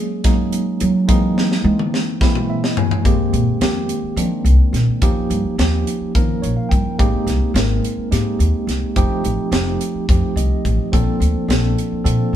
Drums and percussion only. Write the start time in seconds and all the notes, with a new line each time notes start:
0.24 kick, snare, closed hi-hat
0.53 closed hi-hat
0.80 closed hi-hat
1.09 kick, closed hi-hat
1.38 snare
1.52 snare
1.79 mid tom
1.94 snare
2.21 kick, snare
2.35 mid tom
2.64 snare
2.77 floor tom
2.91 floor tom
3.05 kick, closed hi-hat
3.34 closed hi-hat
3.61 snare, closed hi-hat
3.89 closed hi-hat
4.17 closed hi-hat
4.46 closed hi-hat
4.74 snare, closed hi-hat
5.02 kick, closed hi-hat
5.31 closed hi-hat
5.59 snare, closed hi-hat
5.87 closed hi-hat
6.15 kick, closed hi-hat
6.44 closed hi-hat
6.71 kick, closed hi-hat
6.99 kick, closed hi-hat
7.27 snare, closed hi-hat
7.56 snare, closed hi-hat
7.84 closed hi-hat
8.12 snare, closed hi-hat
8.40 closed hi-hat
8.69 snare, closed hi-hat
8.96 kick, closed hi-hat
9.25 closed hi-hat
9.52 snare, closed hi-hat
9.81 closed hi-hat
10.09 kick, closed hi-hat
10.37 closed hi-hat
10.65 kick, closed hi-hat
10.93 kick, closed hi-hat
11.22 closed hi-hat
11.50 snare, closed hi-hat
11.78 closed hi-hat
12.06 closed hi-hat